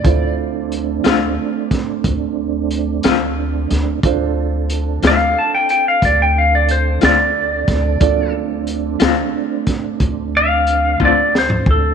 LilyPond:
<<
  \new Staff \with { instrumentName = "Electric slide guitar" } { \time 12/8 \key d \minor \tempo 4. = 60 d''8 r1 r4. | r4. f''8 a''16 g''16 g''16 f''16 d''16 g''16 f''16 d''16 c''8 d''4.~ | d''8 r2. f''4 d''8 c''8 a'8 | }
  \new Staff \with { instrumentName = "Upright piano" } { \time 12/8 \key d \minor <e' f' a' c''>1. | <d' f' a' c''>1. | <d' f' a' d''>1. | }
  \new Staff \with { instrumentName = "Tonewheel organ" } { \time 12/8 \key d \minor <a c' d'>1. | <c' d' a'>1. | <fis bes c' d'>8 <a c' d'>1~ <a c' d'>4. | }
  \new Staff \with { instrumentName = "Clean electric guitar" } { \time 12/8 \key d \minor r4. <d a c' f'>8 r2 r8 <d a c' f'>8 r4 | r4. <d a c' f'>8 r2 r8 <d a c' f'>8 r4 | r4. <d a c' f'>8 r2 r8 <d a c' f'>8 r4 | }
  \new Staff \with { instrumentName = "Upright bass" } { \clef bass \time 12/8 \key d \minor d,4. d,8 r4 d,4. d,4 d,8 | d,4. d,8 r4 d,4. d,4 d,8 | d,4. d,8 r4 d,4. d,4 d,8 | }
  \new DrumStaff \with { instrumentName = "Drums" } \drummode { \time 12/8 <hh bd>4 hh8 <hh sn>4 <hh bd sn>8 <hh bd>4 hh8 <hh sn>4 <hh sn>8 | <hh bd>4 hh8 <hh sn>4 hh8 <hh bd>4 hh8 <hh sn>4 <hh bd sn>8 | <hh bd>4 hh8 <hh sn>4 <hh bd sn>8 <hh bd>4 hh8 bd8 sn16 toml16 bd8 | }
>>